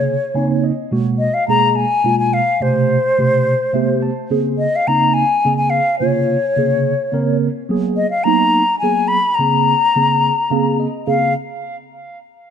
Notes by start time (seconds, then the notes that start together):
Already playing: C3 C#3 A#3 G#4 C#5
0.34 C#3 A#3 C4 D#4 G#5
0.64 D#5
0.91 B2 G#3 A#3 F#4
1.19 D#5
1.34 F5
1.48 B2 G#3 A#3 G#4 A#5
1.70 A#5
1.76 G#5
2.04 B2 G#3 A#3 F4
2.19 G#5
2.33 F5
2.60 B2 C3 A3 G4 C5
3.18 B2 C3 A3 G4
3.73 C3 A3 B3 G4 E5
4.02 A5
4.30 C#3 A#3 C4 G#4
4.58 D#5
4.76 F5
4.87 C#3 A#3 C4 D#4 A#5
5.14 G#5
5.45 C#3 A#3 C4 G#4
5.57 G#5
5.70 F5
5.99 C3 C#3 A#3 F4 C#5
6.57 C3 C#3 A#3 G#4
7.12 C#3 A#3 C4 A#4
7.69 F#3 A#3 B3 G#4
7.97 D#5
8.11 F5
8.24 F#3 A#3 B3 D#4 A#5
8.79 F#3 B3 G#5
8.83 A#3 G#4
9.08 B5
9.35 C#3 A#5
9.39 A#3 C4 G#4
9.95 C#3 A#3 C4 G#4
10.50 C#3 A#3 C4 G#4 F5
10.80 D#5
11.07 C#3 A#3 C4 G#4 F5